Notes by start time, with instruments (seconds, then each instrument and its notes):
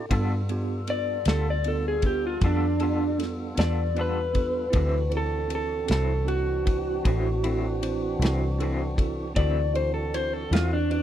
Already playing: clean electric guitar A4
0.09 fingered electric bass G2, tonewheel organ G3 B3 F4 A4, clean electric guitar G3 B3 F4 A4, tine electric piano B3 D4 F4 A4, kick, ride
0.49 tine electric piano B3 D4 F4 G4, ride
0.87 tine electric piano B3 D4 F4 B4, clean electric guitar D5, ride
1.25 fingered electric bass D2, tine electric piano B3 D4 F4 G4, clean electric guitar F4 A4, snare, ride
1.29 clean electric guitar B3
1.50 clean electric guitar D5
1.64 tine electric piano B3 D4 F4 A4, clean electric guitar A4, ride
1.88 clean electric guitar G#4
2.02 tine electric piano B3 D4 F4 B4, kick, ride
2.06 clean electric guitar G4
2.27 clean electric guitar F4
2.41 fingered electric bass F2, clean electric guitar G3 B3 F4 A4, tine electric piano B3 D4 F4 A4, kick, ride
2.46 clean electric guitar D4
2.79 tine electric piano B3 D4 F4 G4, clean electric guitar B3 F4 A4, ride
3.18 tine electric piano B3 D4 F4 A4, ride
3.22 snare
3.55 fingered electric bass E2, tine electric piano B3 D4 F4 B4, clean electric guitar A4 D5, ride
3.60 clean electric guitar B3 F4, snare
3.94 clean electric guitar G3 B3, tine electric piano B3 D4 F4 B4, ride
3.99 clean electric guitar F4 A4 B4
4.33 tine electric piano B3 D4 F4 A4, kick, ride
4.70 fingered electric bass D2, tine electric piano C4 E4 F#4 A4, kick, ride
4.74 clean electric guitar D3 F#3 C4 E4, tonewheel organ E3 C4 D4 F#4
5.10 tine electric piano C4 E4 F#4 A4, ride
5.17 clean electric guitar A4
5.48 tine electric piano C4 E4 F#4 A4, ride
5.55 clean electric guitar A4
5.86 fingered electric bass C2, tine electric piano C4 E4 F#4 A4, ride
5.91 clean electric guitar F#3 C4 E4 A4, snare
6.25 tine electric piano C4 E4 F#4 A4, clean electric guitar F#4, ride
6.64 tine electric piano C4 E4 F#4 B4, kick, ride
7.03 fingered electric bass A1, clean electric guitar D3 F#3 C4 E4, tine electric piano C4 E4 F#4 A4, kick, ride
7.43 clean electric guitar F#3 C4 E4, tine electric piano C4 E4 F#4 A4, ride
7.82 tine electric piano C4 E4 F#4 C5, ride
8.19 fingered electric bass C2, tine electric piano C4 E4 F#4 A4, clean electric guitar E4, ride
8.24 clean electric guitar F#3 C4, snare
8.58 clean electric guitar D3 F#3, tine electric piano C4 E4 F#4 A4, ride
8.63 clean electric guitar C4 E4
8.96 tine electric piano C4 E4 F#4 A4, kick, ride
9.34 fingered electric bass D2, clean electric guitar D3 F#3 D5, tonewheel organ E3 C4 D4 F#4, tine electric piano C4 E4 F#4 A4, kick, ride
9.39 clean electric guitar C4 E4
9.73 tine electric piano C4 E4 F#4 A4, clean electric guitar C5, ride
9.94 clean electric guitar A4
10.14 tine electric piano C4 E4 F#4 A4, clean electric guitar C5, ride
10.33 clean electric guitar A4
10.51 fingered electric bass E2, clean electric guitar F#3 C4 E4 F4, tine electric piano C4 E4 F#4 A4, ride
10.55 snare
10.73 clean electric guitar D4
10.90 tine electric piano C4 E4 F#4 B4, clean electric guitar D4, ride